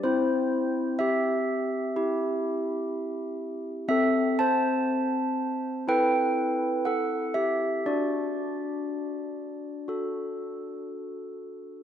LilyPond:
\new Staff \with { instrumentName = "Handbells" } { \time 4/4 \key d \mixolydian \tempo 4 = 61 << { <e' c''>4 <g' e''>2. | <a' e''>8 <c'' a''>4. <b' g''>4 <a' fis''>8 <g' e''>8 | <fis' d''>2. r4 | } \\ { c'2 <e' g'>2 | c'2 <e' a'>2 | d'2 <fis' a'>2 | } >> }